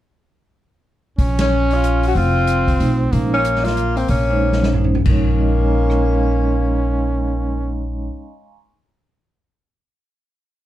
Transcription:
1.18 2.12 A#1 medium
1.18 2.17 C#4 loud
1.18 kick soft
1.18 open hi-hat soft
1.39 1.75 C#4 medium
1.39 snare medium
1.39 ride medium
1.71 2.04 F4 medium
1.71 open hi-hat soft
1.84 closed hi-hat medium
2.03 2.16 F#4 medium
2.03 open hi-hat soft
2.15 2.76 F1 medium
2.15 3.15 C4 medium
2.15 2.97 F4 medium
2.15 kick soft
2.15 open hi-hat soft
2.47 closed hi-hat soft
2.68 kick soft
2.68 open hi-hat soft
2.80 3.10 B1 medium
2.80 2.98 A3 medium
2.80 2.98 D#4 medium
2.80 2.98 F4 medium
2.80 2.98 C5 medium
2.80 open hi-hat soft
3.12 4.06 A#1 medium
3.12 3.31 G#3 medium
3.12 4.94 A#3 medium
3.12 3.30 C#4 soft
3.12 3.31 D#4 medium
3.12 3.31 C5 medium
3.12 kick soft
3.12 open hi-hat soft
3.33 3.66 C#4 medium
3.45 closed hi-hat medium
3.56 snare soft
3.64 3.98 F4 loud
3.64 snare soft
3.64 open hi-hat soft
3.77 closed hi-hat soft
3.97 4.09 C4 medium
3.97 open hi-hat soft
4.08 5.02 A#1 medium
4.08 4.90 C#4 medium
4.08 kick soft
4.08 open hi-hat soft
4.30 4.72 G#3 medium
4.30 4.72 C#4 medium
4.30 4.72 D#4 medium
4.30 4.72 C5 medium
4.52 snare soft
4.63 snare medium
4.74 4.92 G#3 soft
4.74 4.92 C#4 soft
4.74 4.93 D#4 soft
4.74 4.93 C5 medium
4.74 floor tom medium
4.84 floor tom medium
4.95 floor tom medium
5.05 8.08 A#1 medium
5.05 8.11 G#3 medium
5.05 7.77 A#3 medium
5.05 8.13 C#4 medium
5.05 7.77 C#4 medium
5.05 8.14 D#4 medium
5.05 8.15 C#5 medium
5.05 kick soft
5.05 crash medium
5.40 8.42 D#5 soft
5.48 8.50 F5 soft
5.56 8.55 G#5 soft
5.66 8.60 A#5 soft
5.75 8.64 C6 soft
5.86 8.70 C#6 soft
5.86 cross-stick medium

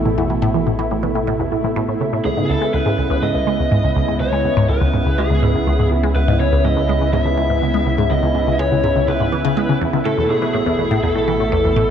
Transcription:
0.00 2.23 A1 medium
0.00 2.21 B2 medium
0.00 2.21 A3 medium
0.00 2.21 E4 medium
0.05 0.14 A2 medium
0.18 0.29 E2 loud
0.30 0.39 A2 medium
0.42 0.51 A2 loud
0.54 0.63 E2 medium
0.67 0.75 A2 medium
0.79 0.90 E3 medium
0.91 1.00 A2 medium
1.03 1.15 E2 loud
1.15 1.24 A2 medium
1.27 1.36 A2 loud
1.40 1.48 E2 medium
1.52 1.61 A2 medium
1.64 1.73 A2 medium
1.76 1.85 A2 loud
1.89 1.97 A2 medium
2.01 2.09 C#3 medium
2.13 2.18 A2 medium
2.25 2.34 C#2 loud
2.25 10.03 C#2 medium
2.25 10.02 C#3 medium
2.25 10.02 B3 medium
2.25 11.90 E4 medium
2.25 2.50 G#4 medium
2.37 2.46 G#2 medium
2.49 2.58 C#2 medium
2.49 2.73 A4 medium
2.62 2.73 G#3 medium
2.74 2.83 C#2 medium
2.74 3.24 B4 medium
2.86 2.98 G#2 loud
2.98 3.07 C#2 medium
3.10 3.19 C#2 loud
3.23 3.31 G#2 medium
3.23 4.16 D#5 loud
3.35 3.44 C#2 medium
3.47 3.59 G#3 medium
3.59 3.68 C#2 medium
3.71 3.83 G#2 medium
3.84 3.92 C#2 medium
3.96 4.04 C#2 loud
4.08 4.17 G#2 medium
4.20 4.29 C#2 medium
4.20 4.69 C#5 medium
4.33 4.44 G#3 medium
4.45 4.53 C#2 medium
4.57 4.68 G#2 loud
4.69 4.78 C#2 medium
4.69 5.19 B4 medium
4.81 4.90 C#2 loud
4.94 5.02 G#2 medium
5.06 5.15 C#2 medium
5.18 5.30 G#3 medium
5.18 5.87 G#4 medium
5.30 5.39 C#2 medium
5.43 5.54 G#2 loud
5.55 5.63 C#2 medium
5.67 5.75 C#2 loud
5.79 5.88 G#2 medium
5.91 6.00 C#2 medium
6.03 6.15 G#3 medium
6.16 6.24 C#2 medium
6.16 6.40 B4 medium
6.28 6.39 G#2 loud
6.40 6.49 C#2 medium
6.40 6.65 C#5 medium
6.52 6.61 C#2 loud
6.64 6.73 G#2 medium
6.64 7.10 D#5 loud
6.77 6.85 C#2 medium
6.89 7.00 G#3 medium
7.01 7.10 C#2 medium
7.13 7.25 G#2 loud
7.13 8.14 E5 loud
7.25 7.34 C#2 medium
7.37 7.46 C#2 loud
7.50 7.58 G#2 medium
7.62 7.71 C#2 medium
7.74 7.86 G#3 medium
7.86 7.95 C#2 medium
7.98 8.10 G#2 loud
8.11 8.19 C#2 medium
8.11 8.59 D#5 medium
8.23 8.31 C#2 loud
8.35 8.44 G#2 medium
8.47 8.56 C#2 medium
8.59 8.71 G#3 medium
8.59 9.10 C#5 medium
8.71 8.80 C#2 medium
8.84 8.95 G#2 loud
8.96 9.04 C#2 medium
9.08 9.17 C#2 loud
9.08 9.77 B4 medium
9.20 9.29 G#2 medium
9.32 9.38 E3 medium
9.45 9.53 C#3 loud
9.57 9.66 G#3 medium
9.69 9.78 C#3 medium
9.81 9.87 E2 loud
9.93 10.02 C#2 loud
10.05 11.90 A1 medium
10.05 10.14 A2 loud
10.05 11.90 B2 medium
10.05 11.90 A3 medium
10.05 10.28 A4 medium
10.18 10.26 E2 medium
10.30 10.39 A2 medium
10.30 10.53 G#4 medium
10.42 10.54 E3 medium
10.54 10.63 A2 medium
10.54 11.03 G#4 medium
10.66 10.78 E2 loud
10.79 10.90 E2 medium
10.91 11.00 A2 loud
11.03 11.12 E2 medium
11.03 11.90 A4 medium
11.15 11.24 A2 medium
11.28 11.39 E3 medium
11.40 11.49 A2 medium
11.52 11.63 E2 loud
11.64 11.76 E2 medium
11.76 11.85 A2 loud

